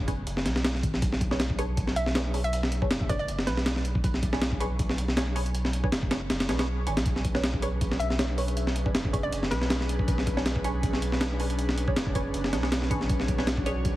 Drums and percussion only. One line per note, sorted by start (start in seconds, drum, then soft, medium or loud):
0.08 kick medium
0.08 closed hi-hat medium
0.27 closed hi-hat medium
0.37 snare soft
0.46 snare medium
0.46 closed hi-hat medium
0.56 snare medium
0.64 snare loud
0.64 closed hi-hat medium
0.75 snare soft
0.83 kick loud
0.83 closed hi-hat medium
0.94 snare soft
1.02 kick loud
1.02 closed hi-hat medium
1.12 snare soft
1.21 kick medium
1.21 closed hi-hat medium
1.31 snare soft
1.40 snare loud
1.40 closed hi-hat medium
1.50 kick loud
1.59 closed hi-hat medium
1.77 kick loud
1.77 closed hi-hat medium
1.87 snare soft
1.96 closed hi-hat medium
2.06 snare soft
2.15 snare loud
2.15 closed hi-hat medium
2.34 open hi-hat medium
2.44 closed hi-hat soft
2.53 closed hi-hat medium
2.63 snare soft
2.72 closed hi-hat medium
2.82 kick medium
2.91 snare loud
2.91 closed hi-hat medium
3.01 kick loud
3.09 kick loud
3.09 closed hi-hat medium
3.28 closed hi-hat medium
3.39 snare soft
3.47 snare medium
3.47 closed hi-hat medium
3.57 snare medium
3.66 snare loud
3.66 closed hi-hat medium
3.76 snare soft
3.85 closed hi-hat medium
3.95 kick medium
4.04 kick loud
4.04 closed hi-hat medium
4.14 snare soft
4.23 kick loud
4.23 closed hi-hat medium
4.33 snare medium
4.42 snare loud
4.42 closed hi-hat medium
4.52 kick loud
4.60 closed hi-hat medium
4.79 kick loud
4.79 closed hi-hat medium
4.89 snare soft
4.98 closed hi-hat medium
5.08 snare soft
5.17 snare loud
5.17 closed hi-hat medium
5.36 open hi-hat medium
5.46 closed hi-hat soft
5.55 closed hi-hat medium
5.65 snare soft
5.73 closed hi-hat medium
5.84 kick medium
5.92 snare loud
5.92 closed hi-hat medium
6.03 kick loud
6.11 snare loud
6.11 closed hi-hat medium
6.30 snare loud
6.30 closed hi-hat medium
6.40 snare loud
6.40 closed hi-hat medium
6.49 snare loud
6.49 closed hi-hat medium
6.59 snare loud
6.59 closed hi-hat medium
6.87 closed hi-hat medium
6.97 snare loud
6.97 closed hi-hat medium
7.06 kick loud
7.06 closed hi-hat medium
7.16 snare soft
7.25 kick loud
7.25 closed hi-hat medium
7.35 snare medium
7.44 snare loud
7.44 closed hi-hat medium
7.54 kick loud
7.62 closed hi-hat medium
7.81 kick loud
7.81 closed hi-hat medium
7.92 snare soft
8.00 closed hi-hat medium
8.10 snare soft
8.19 snare loud
8.19 closed hi-hat medium
8.38 open hi-hat medium
8.48 closed hi-hat soft
8.57 closed hi-hat medium
8.67 snare soft
8.76 closed hi-hat medium
8.86 kick loud
8.95 snare loud
8.95 closed hi-hat medium
9.05 kick loud
9.14 kick loud
9.14 closed hi-hat medium
9.32 closed hi-hat medium
9.43 snare soft
9.51 snare medium
9.51 closed hi-hat medium
9.61 snare medium
9.70 snare loud
9.70 closed hi-hat medium
9.81 snare soft
9.89 closed hi-hat medium
9.99 kick medium
10.08 kick loud
10.08 closed hi-hat medium
10.18 snare soft
10.27 kick medium
10.27 closed hi-hat medium
10.37 snare medium
10.46 snare loud
10.46 closed hi-hat medium
10.56 kick loud
10.64 closed hi-hat medium
10.83 kick loud
10.83 closed hi-hat medium
10.93 snare soft
11.02 closed hi-hat medium
11.12 snare soft
11.21 snare loud
11.21 closed hi-hat medium
11.40 open hi-hat medium
11.50 closed hi-hat soft
11.59 closed hi-hat medium
11.69 snare soft
11.78 closed hi-hat medium
11.88 kick loud
11.96 snare loud
11.96 closed hi-hat medium
12.07 kick loud
12.15 kick loud
12.15 closed hi-hat medium
12.34 closed hi-hat medium
12.44 snare soft
12.53 snare medium
12.53 closed hi-hat medium
12.63 snare soft
12.72 snare loud
12.72 closed hi-hat medium
12.82 snare soft
12.91 kick loud
12.91 closed hi-hat medium
13.01 snare soft
13.09 kick loud
13.09 closed hi-hat medium
13.20 snare soft
13.28 kick medium
13.28 closed hi-hat medium
13.38 snare soft
13.47 snare loud
13.47 closed hi-hat medium
13.57 kick loud
13.66 closed hi-hat medium
13.85 kick loud
13.85 closed hi-hat medium